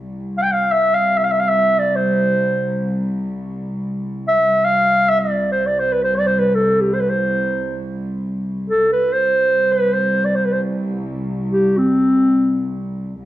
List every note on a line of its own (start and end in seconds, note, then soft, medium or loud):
0.01 4.40 C2 medium
0.38 0.44 F5 medium
0.43 0.54 G5 medium
0.52 0.73 F5 medium
0.72 0.96 E5 medium
0.94 1.19 F5 medium
1.17 1.26 E5 medium
1.24 1.33 F5 medium
1.31 1.41 E5 medium
1.40 1.50 F5 medium
1.49 1.80 E5 medium
1.79 1.97 D5 medium
1.96 3.07 C5 medium
4.28 4.66 E5 medium
4.42 8.78 C2 medium
4.65 5.10 F5 medium
5.09 5.21 E5 medium
5.19 5.50 D5 medium
5.52 5.68 C5 medium
5.67 5.81 D5 medium
5.80 5.94 C5 medium
5.92 6.04 B4 medium
6.04 6.17 C5 medium
6.15 6.28 D5 medium
6.27 6.40 C5 medium
6.39 6.56 B4 medium
6.55 6.82 A4 medium
6.81 6.95 G4 medium
6.94 7.02 C5 medium
7.00 7.11 B4 medium
7.10 7.86 C5 medium
8.69 8.90 A4 medium
8.79 13.18 C2 medium
8.92 9.14 B4 medium
9.12 9.74 C5 medium
9.72 9.95 B4 medium
9.93 10.26 C5 medium
10.25 10.37 D5 medium
10.35 10.47 C5 medium
10.45 10.54 B4 medium
10.53 10.61 C5 medium
11.52 11.79 G4 medium
11.78 12.82 C4 medium
13.19 13.25 C2 medium